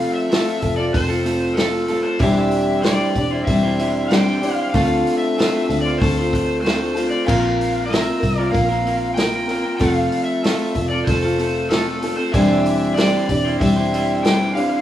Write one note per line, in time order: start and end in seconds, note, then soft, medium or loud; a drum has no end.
0.00 0.28 F3 medium
0.00 0.30 F3 medium
0.00 0.29 A3 loud
0.00 0.30 C4 medium
0.00 0.32 C4 medium
0.00 0.30 F4 loud
0.00 0.32 F4 medium
0.00 0.31 A4 loud
0.00 0.32 A4 medium
0.00 0.14 F5 loud
0.14 0.76 E5 loud
0.29 0.78 F3 medium
0.29 0.63 F3 medium
0.29 0.61 A3 loud
0.29 0.48 C4 loud
0.29 0.64 C4 medium
0.29 0.46 F4 medium
0.29 0.62 F4 medium
0.29 0.44 A4 loud
0.29 snare loud
0.29 open hi-hat medium
0.34 0.61 A4 medium
0.46 0.62 C4 medium
0.46 0.61 F4 medium
0.46 0.62 A4 medium
0.62 0.91 F1 medium
0.62 0.95 F4 soft
0.62 0.95 A4 soft
0.62 muted clean electric guitar stroke soft
0.62 kick medium
0.62 open hi-hat medium
0.66 0.94 C4 soft
0.76 1.11 C4 medium
0.76 1.09 F4 medium
0.76 1.07 A4 medium
0.76 0.94 D5 loud
0.93 2.04 F1 loud
0.93 1.56 F3 medium
0.93 1.59 C4 medium
0.93 1.59 F4 medium
0.93 1.59 C5 medium
0.93 kick loud
0.93 open hi-hat medium
0.97 1.60 A4 medium
1.08 1.25 C4 medium
1.08 1.25 F4 medium
1.08 1.26 A4 medium
1.24 1.55 A3 medium
1.24 1.57 C4 medium
1.24 1.57 F4 medium
1.24 1.57 A4 medium
1.24 open hi-hat medium
1.54 2.05 F3 medium
1.54 1.90 F3 medium
1.54 1.85 A3 medium
1.54 1.74 C4 loud
1.54 2.05 A4 medium
1.54 open hi-hat medium
1.58 1.91 C4 medium
1.58 1.72 F4 medium
1.58 1.90 F4 medium
1.58 1.70 A4 loud
1.58 1.88 A4 medium
1.58 snare loud
1.71 1.88 C4 medium
1.71 1.87 F4 medium
1.71 1.88 A4 medium
1.87 2.18 A3 medium
1.87 2.06 C4 medium
1.87 2.04 F4 medium
1.87 2.02 A4 medium
1.87 2.22 A4 medium
1.87 open hi-hat medium
1.92 2.21 C4 soft
1.92 2.22 F4 medium
2.03 2.20 C4 medium
2.03 2.19 F4 medium
2.03 2.19 A4 medium
2.03 2.21 C5 medium
2.19 3.03 E1 loud
2.19 2.83 D3 medium
2.19 2.82 E3 medium
2.19 2.85 E3 medium
2.19 2.84 G3 loud
2.19 2.82 G3 medium
2.19 2.84 C4 medium
2.19 2.85 D4 medium
2.19 2.84 E4 loud
2.19 2.85 C5 loud
2.19 2.86 E5 medium
2.19 kick loud
2.19 open hi-hat medium
2.23 2.86 G4 medium
2.51 open hi-hat medium
2.82 3.14 D3 loud
2.82 3.32 E3 medium
2.82 3.16 G3 medium
2.82 3.01 G3 medium
2.82 3.17 C4 medium
2.82 3.17 D4 medium
2.82 3.00 E4 loud
2.82 2.99 C5 medium
2.82 3.45 D5 medium
2.82 snare loud
2.82 open hi-hat medium
2.87 3.15 G4 medium
3.00 3.14 G3 medium
3.00 3.15 E4 medium
3.00 3.16 C5 medium
3.15 3.43 E1 medium
3.15 3.49 C4 soft
3.15 3.48 D4 medium
3.15 3.48 G4 medium
3.15 muted clean electric guitar stroke soft
3.15 kick medium
3.15 open hi-hat medium
3.31 3.64 G3 medium
3.31 3.64 E4 medium
3.31 3.63 C5 medium
3.45 4.57 E1 medium
3.45 4.08 G3 medium
3.45 4.12 E5 medium
3.45 kick loud
3.45 open hi-hat medium
3.50 4.11 C4 medium
3.50 4.11 D4 medium
3.50 4.12 G4 medium
3.63 3.78 G3 medium
3.63 3.79 E4 medium
3.63 3.80 C5 medium
3.78 4.10 D3 medium
3.78 4.11 G3 medium
3.78 4.11 E4 medium
3.78 4.12 C5 medium
3.78 open hi-hat medium
4.07 4.41 D3 loud
4.07 4.59 E3 medium
4.07 4.42 G3 medium
4.07 4.43 C4 medium
4.07 4.54 G5 loud
4.07 open hi-hat medium
4.12 4.28 G3 medium
4.12 4.42 D4 medium
4.12 4.27 E4 loud
4.12 4.40 G4 medium
4.12 4.26 C5 loud
4.12 snare medium
4.26 4.42 G3 medium
4.26 4.42 E4 medium
4.26 4.44 C5 medium
4.41 4.71 D3 medium
4.41 4.58 G3 medium
4.41 4.74 C4 soft
4.41 4.75 D4 soft
4.41 4.57 E4 medium
4.41 4.74 G4 medium
4.41 4.56 C5 medium
4.41 open hi-hat medium
4.54 4.73 E4 medium
4.54 4.75 C5 medium
4.54 4.69 F5 loud
4.59 4.73 G3 medium
4.70 5.02 D2 loud
4.70 5.36 D3 loud
4.70 5.38 D3 medium
4.70 5.37 A3 medium
4.70 5.38 C4 medium
4.70 5.18 F5 medium
4.74 5.38 C4 medium
4.74 5.39 F4 loud
4.74 5.39 F4 medium
4.74 5.39 A4 medium
4.74 5.39 C5 medium
4.74 kick loud
4.74 open hi-hat medium
5.07 open hi-hat medium
5.18 5.81 E5 medium
5.38 5.86 D3 medium
5.38 5.70 A3 medium
5.38 5.68 A3 medium
5.38 5.70 C4 medium
5.38 5.55 C4 loud
5.38 5.70 F4 medium
5.38 5.54 F4 medium
5.38 5.67 A4 medium
5.38 5.52 C5 medium
5.38 snare loud
5.38 open hi-hat medium
5.53 5.69 C4 medium
5.53 5.69 F4 medium
5.53 5.70 C5 medium
5.69 5.97 D2 medium
5.69 6.00 C4 soft
5.69 6.00 F4 soft
5.69 6.01 A4 medium
5.69 muted clean electric guitar stroke soft
5.69 open hi-hat medium
5.81 6.00 D5 medium
5.86 6.20 C4 medium
5.86 6.19 F4 medium
5.86 6.17 C5 medium
5.98 7.11 D2 loud
5.98 6.61 A3 medium
5.98 6.64 C4 medium
5.98 6.65 F4 medium
5.98 6.60 C5 medium
5.98 kick loud
6.03 6.65 A4 medium
6.03 open hi-hat medium
6.17 6.33 C4 medium
6.17 6.34 F4 medium
6.17 6.35 C5 medium
6.33 6.64 A3 medium
6.33 6.65 C4 medium
6.33 6.66 F4 medium
6.33 6.67 C5 medium
6.33 kick medium
6.33 open hi-hat medium
6.61 7.12 D3 medium
6.61 6.95 A3 medium
6.61 6.94 A3 medium
6.61 6.96 C4 medium
6.61 7.09 C5 medium
6.66 6.83 C4 loud
6.66 6.96 F4 medium
6.66 6.82 F4 loud
6.66 6.93 A4 medium
6.66 6.80 C5 loud
6.66 snare loud
6.66 open hi-hat medium
6.81 6.96 C4 medium
6.81 6.97 F4 medium
6.81 6.98 C5 medium
6.94 7.26 A3 medium
6.94 7.14 C4 medium
6.94 7.25 C4 soft
6.94 7.26 F4 medium
6.94 7.13 F4 medium
6.94 7.27 A4 medium
6.94 7.12 C5 medium
6.94 open hi-hat medium
7.10 7.29 F4 medium
7.10 7.30 C5 medium
7.10 7.28 D5 medium
7.15 7.29 C4 medium
7.25 8.10 A#1 loud
7.25 7.87 A#3 medium
7.25 7.89 A#3 medium
7.25 7.89 C4 medium
7.25 7.90 F4 medium
7.25 7.91 A#4 medium
7.25 7.85 F5 loud
7.25 kick loud
7.29 7.91 C4 medium
7.29 7.92 F4 loud
7.29 7.92 A#4 loud
7.29 crash medium
7.61 open hi-hat medium
7.86 8.22 A#3 medium
7.86 8.22 C4 medium
7.86 8.38 E5 medium
7.90 8.22 A#3 loud
7.90 8.09 C4 loud
7.90 8.21 F4 medium
7.90 8.08 F4 medium
7.90 8.18 A#4 medium
7.90 8.05 A#4 loud
7.90 snare loud
7.90 open hi-hat medium
8.07 8.23 C4 medium
8.07 8.24 F4 medium
8.07 8.22 A#4 medium
8.20 8.50 C2 medium
8.20 8.51 C4 soft
8.20 8.52 F4 soft
8.20 8.52 A#4 soft
8.20 muted clean electric guitar stroke soft
8.20 kick medium
8.20 open hi-hat medium
8.38 8.72 C4 medium
8.38 8.69 F4 medium
8.38 8.68 A#4 medium
8.38 8.50 D5 medium
8.51 9.15 A#3 medium
8.51 9.17 C4 medium
8.51 9.17 F4 medium
8.51 9.18 A#4 medium
8.51 9.12 F5 medium
8.51 kick loud
8.51 open hi-hat medium
8.55 9.64 A#1 medium
8.69 8.86 C4 medium
8.69 8.86 F4 medium
8.69 8.87 A#4 medium
8.85 9.16 A#3 medium
8.85 9.18 C4 medium
8.85 9.18 F4 medium
8.85 9.19 A#4 medium
8.85 open hi-hat medium
9.14 9.49 A#3 medium
9.14 9.47 A#3 loud
9.14 9.49 C4 medium
9.14 9.35 C4 loud
9.14 9.77 G5 loud
9.14 snare medium
9.14 open hi-hat medium
9.19 9.48 F4 medium
9.19 9.33 F4 loud
9.19 9.46 A#4 medium
9.19 9.32 A#4 loud
9.33 9.49 C4 medium
9.33 9.49 F4 medium
9.33 9.50 A#4 medium
9.48 9.79 A#3 medium
9.48 9.65 C4 medium
9.48 9.79 C4 soft
9.48 9.79 F4 soft
9.48 9.64 F4 medium
9.48 9.80 A#4 soft
9.48 9.62 A#4 medium
9.48 open hi-hat medium
9.63 9.80 C4 medium
9.63 9.79 F4 medium
9.63 9.78 A#4 medium
9.77 10.08 F1 medium
9.77 10.42 F3 medium
9.77 10.44 F3 medium
9.77 10.43 A3 medium
9.77 10.45 C4 medium
9.77 10.44 C4 medium
9.77 10.44 F4 medium
9.77 9.94 F#5 loud
9.77 kick loud
9.77 open hi-hat medium
9.81 10.44 F4 loud
9.81 10.44 A4 loud
9.81 10.45 A4 medium
9.94 10.24 F5 loud
10.12 open hi-hat medium
10.24 10.86 E5 medium
10.43 10.91 F3 loud
10.43 10.74 A3 loud
10.43 10.76 A3 medium
10.43 10.61 C4 loud
10.43 10.77 C4 medium
10.43 10.59 F4 medium
10.43 10.77 F4 medium
10.43 10.57 A4 loud
10.43 snare loud
10.43 open hi-hat medium
10.47 10.75 A4 medium
10.58 10.75 C4 medium
10.58 10.75 F4 medium
10.58 10.74 A4 medium
10.75 11.03 F1 medium
10.75 11.09 F4 soft
10.75 11.08 A4 medium
10.75 muted clean electric guitar stroke soft
10.75 kick medium
10.75 open hi-hat medium
10.81 11.10 C4 soft
10.89 11.23 F4 medium
10.89 11.21 A4 medium
10.89 11.07 D5 medium
10.94 11.25 C4 medium
11.04 12.17 F1 loud
11.04 11.71 C5 medium
11.04 kick loud
11.04 open hi-hat medium
11.10 11.69 A3 medium
11.10 11.71 C4 medium
11.10 11.71 F4 medium
11.10 11.72 A4 medium
11.23 11.39 C4 medium
11.23 11.39 F4 medium
11.23 11.40 A4 medium
11.38 11.70 A3 medium
11.38 11.71 C4 medium
11.38 11.71 F4 medium
11.38 11.71 A4 medium
11.38 open hi-hat medium
11.69 12.18 F3 loud
11.69 12.03 A3 medium
11.69 12.00 A3 loud
11.69 11.88 C4 loud
11.69 12.03 C4 medium
11.69 11.86 F4 loud
11.69 12.04 F4 medium
11.69 12.14 A4 medium
11.69 11.84 A4 loud
11.69 snare loud
11.69 open hi-hat medium
11.73 12.02 A4 medium
11.86 12.02 C4 medium
11.86 12.02 F4 medium
11.86 12.02 A4 medium
12.01 12.32 A3 medium
12.01 12.19 C4 medium
12.01 12.17 F4 medium
12.01 12.35 A4 medium
12.01 12.16 A4 medium
12.01 open hi-hat medium
12.05 12.33 C4 soft
12.05 12.36 F4 medium
12.16 12.34 C4 medium
12.16 12.33 F4 medium
12.16 12.32 A4 medium
12.16 12.32 C5 medium
12.32 13.16 E1 loud
12.32 12.96 D3 medium
12.32 12.95 E3 loud
12.32 12.97 E3 medium
12.32 12.96 G3 medium
12.32 12.95 G3 medium
12.32 12.96 C4 medium
12.32 12.97 E4 loud
12.32 12.98 G4 medium
12.32 12.98 C5 loud
12.32 12.99 E5 medium
12.32 kick loud
12.32 open hi-hat medium
12.36 12.98 D4 loud
12.66 open hi-hat medium
12.94 13.28 D3 medium
12.94 13.45 E3 medium
12.94 13.29 G3 medium
12.94 13.13 G3 loud
12.94 13.29 C4 medium
12.94 13.30 D4 medium
12.94 13.13 E4 loud
12.94 13.59 D5 medium
12.94 snare loud
12.94 open hi-hat medium
12.99 13.28 G4 medium
12.99 13.11 C5 loud
13.12 13.28 G3 medium
13.12 13.29 E4 medium
13.12 13.29 C5 medium
13.29 13.57 E1 medium
13.29 13.60 C4 soft
13.29 13.61 D4 soft
13.29 13.61 G4 medium
13.29 muted clean electric guitar stroke soft
13.29 kick medium
13.29 open hi-hat medium
13.45 13.77 G3 medium
13.45 13.76 E4 medium
13.45 13.75 C5 medium
13.60 14.70 E1 medium
13.60 14.23 G3 medium
13.60 14.24 C4 medium
13.60 14.25 D4 medium
13.60 14.26 G4 medium
13.60 14.26 E5 loud
13.60 kick loud
13.60 open hi-hat medium
13.76 13.92 G3 medium
13.76 13.93 E4 medium
13.76 13.94 C5 medium
13.92 14.24 D3 medium
13.92 14.25 G3 medium
13.92 14.25 E4 medium
13.92 14.26 C5 medium
13.92 open hi-hat medium
14.23 14.54 D3 medium
14.23 14.72 E3 loud
14.23 14.56 G3 medium
14.23 14.41 G3 loud
14.23 14.57 C4 medium
14.23 14.55 D4 medium
14.23 14.40 E4 medium
14.23 14.54 G4 medium
14.23 14.38 C5 loud
14.23 14.54 G5 medium
14.23 snare loud
14.23 open hi-hat medium
14.39 14.55 G3 medium
14.39 14.57 E4 medium
14.39 14.57 C5 medium
14.54 14.81 D3 medium
14.54 14.73 G3 medium
14.54 14.81 C4 soft
14.54 14.81 D4 soft
14.54 14.72 E4 medium
14.54 14.81 G4 medium
14.54 14.71 C5 medium
14.54 14.81 F5 medium
14.54 open hi-hat medium
14.72 14.81 G3 medium
14.72 14.81 E4 medium
14.72 14.81 C5 medium